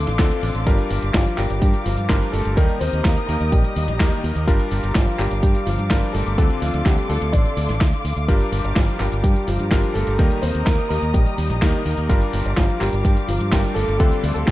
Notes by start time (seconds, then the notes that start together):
Already playing: D3 C4 D4 F4 A4 F5 C6 D6
0.07 A1, snare, closed hi-hat, cabasa
0.19 D2 D3 C4 D4 F4 A4, kick, snare, clap, closed hi-hat, cabasa
0.31 closed hi-hat, cabasa
0.43 A1, open hi-hat
0.55 A1, closed hi-hat, cabasa
0.67 G1 G3 D4 F4 G4 A#4 A#5, kick, closed hi-hat, cabasa
0.79 closed hi-hat, cabasa
0.90 G1, open hi-hat
1.02 G1, closed hi-hat, cabasa
1.13 G1 F3 F4, kick, snare, clap, closed hi-hat, cabasa
1.26 closed hi-hat, cabasa
1.36 G1 G3 D4 F4 G4 A#4, clap, open hi-hat
1.50 G1, closed hi-hat, cabasa
1.60 G2 G3 G4, kick, closed hi-hat, cabasa
1.74 closed hi-hat, cabasa
1.84 G1 F3 F4, open hi-hat
1.98 G2, closed hi-hat, cabasa
2.09 G1 G3 D4 F4 G4 A#4, kick, snare, clap, closed hi-hat, cabasa
2.21 closed hi-hat, cabasa
2.32 G1 A3 A4, open hi-hat
2.45 G1, closed hi-hat, cabasa
2.56 D#2 D#3 G3 A#3 D#4 G4 A#4 D#5 D#6, kick, closed hi-hat, cabasa
2.69 closed hi-hat, cabasa
2.80 D#2 C4 C5, open hi-hat
2.93 D#2, closed hi-hat, cabasa
3.03 D#2 A#3 A#4, kick, snare, clap, closed hi-hat, cabasa
3.17 closed hi-hat, cabasa
3.27 D#2 D#3 A#3 D#4 G4 A#4, open hi-hat
3.40 D#2, closed hi-hat, cabasa
3.51 A#1 G3 G4, kick, closed hi-hat, cabasa
3.64 closed hi-hat, cabasa
3.76 D#2, open hi-hat
3.88 A#1, snare, closed hi-hat, cabasa
4.00 D#2 D#3 A#3 D#4 G4 A#4, kick, snare, clap, closed hi-hat, cabasa
4.12 closed hi-hat, cabasa
4.24 D#2, open hi-hat
4.36 D#2, closed hi-hat, cabasa
4.47 G1 G3 D4 F4 G4 A#4 F5 D6, kick, closed hi-hat, cabasa
4.60 closed hi-hat, cabasa
4.71 G1, open hi-hat
4.83 G1, closed hi-hat, cabasa
4.94 G1 F3 F4, kick, snare, clap, closed hi-hat, cabasa
5.07 closed hi-hat, cabasa
5.18 G1 G3 D4 F4 G4 A#4, clap, open hi-hat
5.31 G1, closed hi-hat, cabasa
5.41 G2 G3 G4, kick, closed hi-hat, cabasa
5.55 closed hi-hat, cabasa
5.65 G1 F3 F4, open hi-hat
5.79 G2, closed hi-hat, cabasa
5.90 G1 G3 D4 F4 G4 A#4, kick, snare, clap, closed hi-hat, cabasa
6.02 closed hi-hat, cabasa
6.13 G1 A3 A4, open hi-hat
6.26 G1, closed hi-hat, cabasa
6.37 D2 D3 G3 C4 D4 F4 G4 A4 F5 C6, kick, closed hi-hat, cabasa
6.50 closed hi-hat, cabasa
6.60 D2 F3 F4, open hi-hat
6.74 D2, closed hi-hat, cabasa
6.85 D2 G3 G4, kick, snare, clap, closed hi-hat, cabasa
6.98 closed hi-hat, cabasa
7.09 D2 D3 A3 C4 D4 F4 A4, open hi-hat
7.21 D2, closed hi-hat, cabasa
7.32 A1 D4 D5, kick, closed hi-hat, cabasa
7.45 closed hi-hat, cabasa
7.57 D2, open hi-hat
7.69 A1, snare, closed hi-hat, cabasa
7.81 D2, kick, snare, clap, closed hi-hat, cabasa
7.93 closed hi-hat, cabasa
8.04 D2, open hi-hat
8.16 D2, closed hi-hat, cabasa
8.28 G1 G3 D4 F4 G4 A#4 A#5, kick, closed hi-hat, cabasa
8.41 closed hi-hat, cabasa
8.52 G1, open hi-hat
8.64 G1, closed hi-hat, cabasa
8.75 G1 F3 F4, kick, snare, clap, closed hi-hat, cabasa
8.88 closed hi-hat, cabasa
8.99 G1 G3 D4 F4 G4 A#4, clap, open hi-hat
9.12 G1, closed hi-hat, cabasa
9.22 G2 G3 G4, kick, closed hi-hat, cabasa
9.36 closed hi-hat, cabasa
9.46 G1 F3 F4, open hi-hat
9.59 G2, closed hi-hat, cabasa
9.71 G1 G3 D4 F4 G4 A#4, kick, snare, clap, closed hi-hat, cabasa
9.83 closed hi-hat, cabasa
9.94 G1 A3 A4, open hi-hat
10.07 G1, closed hi-hat, cabasa
10.18 D#2 D#3 G3 A#3 D#4 G4 A#4 D#5 D#6, kick, closed hi-hat, cabasa
10.31 closed hi-hat, cabasa
10.41 D#2 C4 C5, open hi-hat
10.55 D#2, closed hi-hat, cabasa
10.65 D#2 A#3 A#4, kick, snare, clap, closed hi-hat, cabasa
10.79 closed hi-hat, cabasa
10.89 D#2 D#3 A#3 D#4 G4 A#4, open hi-hat
11.02 D#2, closed hi-hat, cabasa
11.13 A#1 G3 G4, kick, closed hi-hat, cabasa
11.26 closed hi-hat, cabasa
11.38 D#2, open hi-hat
11.50 A#1, snare, closed hi-hat, cabasa
11.62 D#2 D#3 A#3 D#4 G4 A#4, kick, snare, clap, closed hi-hat, cabasa
11.74 closed hi-hat, cabasa
11.85 D#2, open hi-hat
11.97 D#2, closed hi-hat, cabasa
12.09 G1 G3 D4 F4 G4 A#4 F5 D6, kick, closed hi-hat, cabasa
12.21 closed hi-hat, cabasa
12.33 G1, open hi-hat
12.45 G1, closed hi-hat, cabasa
12.56 G1 F3 F4, kick, snare, clap, closed hi-hat, cabasa
12.69 closed hi-hat, cabasa
12.80 G1 G3 D4 F4 G4 A#4, clap, open hi-hat
12.93 G1, closed hi-hat, cabasa
13.03 G2 G3 G4, kick, closed hi-hat, cabasa
13.17 closed hi-hat, cabasa
13.27 G1 F3 F4, open hi-hat
13.40 G2, closed hi-hat, cabasa
13.51 G1 G3 D4 F4 G4 A#4, kick, snare, clap, closed hi-hat, cabasa
13.64 closed hi-hat, cabasa
13.74 G1 A3 A4, open hi-hat
13.88 G1, closed hi-hat, cabasa
13.98 D2 D3 G3 C4 D4 F4 G4 A4 C6, kick, closed hi-hat, cabasa
14.12 closed hi-hat, cabasa
14.23 D2, open hi-hat
14.34 D2 A3 A4, closed hi-hat, cabasa
14.46 D2 G3 G4, kick, snare, clap, closed hi-hat, cabasa